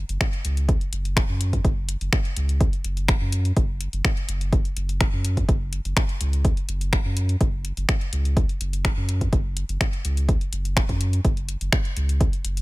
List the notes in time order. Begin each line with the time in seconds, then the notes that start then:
0.09 F#1, closed hi-hat
0.21 finger snap, kick, closed hi-hat
0.33 closed hi-hat
0.45 C#2, closed hi-hat
0.57 closed hi-hat
0.69 kick, closed hi-hat
0.81 closed hi-hat
0.93 F#1, closed hi-hat
1.05 closed hi-hat
1.17 finger snap, kick, closed hi-hat
1.29 F#2
1.41 closed hi-hat
1.53 kick, closed hi-hat
1.65 F#1, kick, closed hi-hat
1.89 closed hi-hat
2.01 F#1, closed hi-hat
2.13 finger snap, kick, closed hi-hat
2.25 closed hi-hat
2.37 C#2, closed hi-hat
2.49 closed hi-hat
2.61 kick, closed hi-hat
2.73 closed hi-hat
2.84 F#1, closed hi-hat
2.97 closed hi-hat
3.08 finger snap, kick, closed hi-hat
3.21 F#2
3.32 closed hi-hat
3.45 closed hi-hat
3.57 F#1, kick, closed hi-hat
3.81 closed hi-hat
3.93 F#1, closed hi-hat
4.05 finger snap, kick, closed hi-hat
4.17 closed hi-hat
4.29 F#1, closed hi-hat
4.41 closed hi-hat
4.53 kick, closed hi-hat
4.65 closed hi-hat
4.77 F#1, closed hi-hat
4.89 closed hi-hat
5.01 finger snap, kick, closed hi-hat
5.13 F#2
5.25 closed hi-hat
5.37 kick, closed hi-hat
5.49 F#1, kick, closed hi-hat
5.73 closed hi-hat
5.85 F#1, closed hi-hat
5.97 finger snap, kick, closed hi-hat
6.09 closed hi-hat
6.21 C#2, closed hi-hat
6.33 closed hi-hat
6.45 kick, closed hi-hat
6.57 closed hi-hat
6.69 F#1, closed hi-hat
6.81 closed hi-hat
6.93 finger snap, kick, closed hi-hat
7.05 F#2
7.17 closed hi-hat
7.29 closed hi-hat
7.41 F#1, kick, closed hi-hat
7.65 closed hi-hat
7.77 F#1, closed hi-hat
7.89 finger snap, kick, closed hi-hat
8.01 closed hi-hat
8.13 C#2, closed hi-hat
8.25 closed hi-hat
8.37 kick, closed hi-hat
8.49 closed hi-hat
8.61 F#1, closed hi-hat
8.73 closed hi-hat
8.85 finger snap, kick, closed hi-hat
8.97 F#2
9.09 closed hi-hat
9.21 kick, closed hi-hat
9.33 F#1, kick, closed hi-hat
9.57 closed hi-hat
9.69 F#1, closed hi-hat
9.81 finger snap, kick, closed hi-hat
9.93 closed hi-hat
10.05 C#2, closed hi-hat
10.17 closed hi-hat
10.29 kick, closed hi-hat
10.41 closed hi-hat
10.53 F#1, closed hi-hat
10.65 closed hi-hat
10.77 finger snap, kick, closed hi-hat
10.89 F#2, kick, closed hi-hat
11.01 closed hi-hat
11.13 closed hi-hat
11.25 F#1, kick, closed hi-hat
11.37 closed hi-hat
11.49 closed hi-hat
11.61 F#1, closed hi-hat
11.72 finger snap, kick, closed hi-hat
11.85 closed hi-hat
11.97 C#2, closed hi-hat
12.09 closed hi-hat
12.21 kick, closed hi-hat
12.33 closed hi-hat
12.45 F#1, closed hi-hat
12.57 closed hi-hat